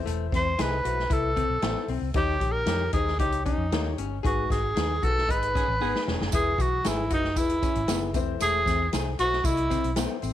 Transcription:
Already playing: E3 E4 A4 C5
0.06 E1 A3, closed hi-hat
0.32 E2 C4 C5, kick, snare, closed hi-hat
0.58 C2 E4 G#4 A4 B4 D#5, snare, closed hi-hat
0.84 B1 E4 F#4 A4 C5, closed hi-hat
0.99 snare
1.10 C2 E4 A4 B4, kick, closed hi-hat
1.36 C4, kick, closed hi-hat
1.50 B1
1.62 A1 B3 E4 A4 C5, snare, closed hi-hat
1.88 B1 C4, open hi-hat
2.01 C2
2.14 D#2 D#3 D#4 G4 C#5, kick, closed hi-hat
2.40 A#1 G4, kick, closed hi-hat
2.52 A#4
2.66 F2 D#4 G4 C#5, snare, closed hi-hat
2.93 D#2 D#4 G4 G#4 C5, kick, closed hi-hat
3.07 snare
3.19 C#2 D#4 G4 C#5, kick, closed hi-hat
3.32 closed hi-hat
3.45 C#4 D#4, kick, closed hi-hat
3.58 F2
3.71 D#2 A#3 D#4 G4 C#5, snare, closed hi-hat
3.98 G1 C#4, closed hi-hat
4.23 G#1 G#2 D#4 F#4 G#4 B4, kick, closed hi-hat
4.50 G#1 F#4 G#4, kick, snare, closed hi-hat
4.76 D#2 D#4 G#4 B4, snare, closed hi-hat
5.02 B1 D#4 F#4 G#4 A4 B4, kick, closed hi-hat
5.18 snare
5.28 G#1 D#4 G#4 B4, kick, closed hi-hat
5.43 closed hi-hat
5.55 D#3 B3 C#4 G#4, kick, closed hi-hat
5.68 A1
5.80 G#1 D#3 B3 D#4 G#4 B4
5.95 snare
6.07 E1 C#4, snare
6.20 F#1, snare
6.32 E1 E3 E4 G#4 B4, kick, closed hi-hat, tambourine
6.58 B1 F#4, kick, closed hi-hat, tambourine
6.84 G#1 E4 G#4 B4, snare, closed hi-hat, tambourine
6.88 E4
7.10 F#1 D#4 E4 F#4 G#4 B4, kick, closed hi-hat, tambourine
7.24 snare
7.36 E1 E4 G#4 B4, kick, closed hi-hat, tambourine
7.50 closed hi-hat
7.62 C#4, kick, closed hi-hat, tambourine
7.75 G#1, closed hi-hat
7.88 F#1 B3 E4 G#4 B4, snare, closed hi-hat, tambourine
8.14 E1 E3 A3 C4 E4 C5, kick, closed hi-hat, tambourine
8.40 E1 A3 G#4, closed hi-hat, tambourine
8.66 E2 C4, kick, snare, closed hi-hat, tambourine
8.93 C2 E4 G#4 A4 C5, snare, closed hi-hat, tambourine
9.19 B1 E4 F#4 A4 C5, closed hi-hat, tambourine
9.33 snare
9.44 C2 E4 A4 D#5, kick, closed hi-hat, tambourine
9.57 closed hi-hat
9.70 C4, kick, closed hi-hat, tambourine
9.84 B1, closed hi-hat
9.96 B3 E4 A4 C5, snare, closed hi-hat, tambourine
10.22 A1 C4, open hi-hat, tambourine

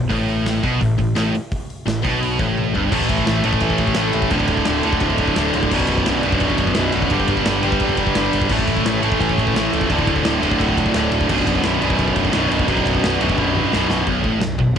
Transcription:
0.09 A1 A2, kick, open hi-hat
0.28 open hi-hat
0.46 snare, open hi-hat
0.62 B1 B2, kick, open hi-hat
0.80 A1 A2, kick, open hi-hat
0.98 A1 A2, kick, open hi-hat
1.15 A1 A2, snare, open hi-hat
1.35 open hi-hat
1.52 kick, open hi-hat
1.70 open hi-hat
1.86 A1 A2, snare, open hi-hat
2.03 B1 B2, kick, open hi-hat
2.23 open hi-hat
2.39 A1 A2, kick, open hi-hat
2.58 high tom
2.74 G1 G2, floor tom
2.92 A1 A2 E3 A3 C#4 A4 C#5, kick, crash
3.01 kick
3.09 A1, kick, ride
3.18 kick
3.26 A1 A2 E3 A3, snare, ride
3.44 A1 A2 E3 A3, ride
3.53 kick
3.60 A1 A2 E3 A3, kick, ride
3.70 kick
3.78 A1, kick, ride
3.88 kick
3.94 A1 A2 E3 A3, snare, ride
4.13 A1 A2 E3 A3, ride
4.22 kick
4.30 D1 D2 A2 D3 F#3 D4 A4 D5, kick, ride
4.40 kick
4.47 D1, kick, ride
4.57 kick
4.65 D1 D2 A2 D3, snare, ride
4.83 D1 D2 A2 D3, ride
4.93 kick
5.00 D1 D2 A2 D3, kick, ride
5.10 kick
5.18 kick, ride
5.28 kick
5.36 D1 D2 A2 D3, snare, ride
5.54 D1 D2 A2 D3, ride
5.63 kick
5.70 B0 B1 F#2 B4, kick, crash
5.74 B2
5.80 kick
5.87 B0, kick, ride
5.98 kick
6.06 B0 B1 F#2 B2, snare, ride
6.23 B0 B1 F#2 B2, ride
6.32 kick
6.40 B0 B1, kick, ride
6.44 F#2 B2
6.50 kick
6.58 B0, kick, ride
6.67 kick
6.75 B0 B1, snare, ride
6.79 F#2 B2
6.92 B0 B1 F#2 B2, ride
7.02 kick
7.10 G1 G2 D3 G3 B4, kick, ride
7.20 kick
7.27 G1, kick, ride
7.37 kick
7.45 G1 G2 D3 G3, snare, ride
7.63 G1 G2 D3 G3, ride
7.72 kick
7.80 G1 G2 D3 G3, kick, ride
7.89 kick
7.97 kick, ride
8.07 kick
8.15 G1 G2 D3 G3, snare, ride
8.33 G1 G2 D3 G3, ride
8.42 kick
8.49 A1 A2 E3 A3 C#4 A4 C#5, kick, crash
8.59 kick
8.67 A1, kick, ride
8.77 kick
8.85 A1 A2 E3 A3, snare, ride
9.02 A1 A2 E3 A3, ride
9.12 kick
9.20 A1 A2 E3 A3, kick, ride
9.29 kick
9.38 A1, kick, ride
9.47 kick
9.54 A1 A2 E3 A3, snare, ride
9.72 C#1 A2 E3 A3, ride
9.81 kick
9.88 D1 D2 A2 D3 F#3 D4 D5, kick, ride
9.98 kick
10.07 D1, kick, ride
10.16 kick
10.23 D1 D2 A2 D3, snare, ride
10.42 D1 D2 A2 D3, ride
10.52 kick
10.59 D1 D2 A2 D3, kick, ride
10.69 kick
10.77 kick, ride
10.86 kick
10.94 D1 D2 A2 D3, snare, ride
11.12 D1 D2 A2 D3, ride
11.21 kick
11.29 B0 B1 F#2 B2 B4, kick, crash
11.38 kick
11.47 B0, kick, ride
11.55 kick
11.63 B0 B1 F#2 B2, snare, ride
11.82 B0 B1 F#2 B2, ride
11.90 kick
11.99 B0 B1 F#2 B2, kick, ride
12.08 kick
12.16 B0, kick, ride
12.25 kick
12.32 B0 B1 F#2 B2, snare, ride
12.50 B0 B1 F#2 B2, ride
12.59 kick
12.66 B0 B1 F#2 B2 F#3 D4 D5, kick, ride
12.77 kick
12.86 B0, kick, ride
12.95 kick
13.02 B0 B1 F#2 B2, snare, ride
13.21 B0 B1 F#2 B2, ride
13.29 kick
13.37 B0 B1 F#2 B2, kick, high tom
13.55 mid tom
13.71 B0 B1 F#2 B2, snare
13.89 B0 B1 F#2 B2, snare
14.06 B0 B1, kick, crash
14.24 A1 A2, kick
14.40 B0 B1, snare, crash
14.58 B0 B1, kick

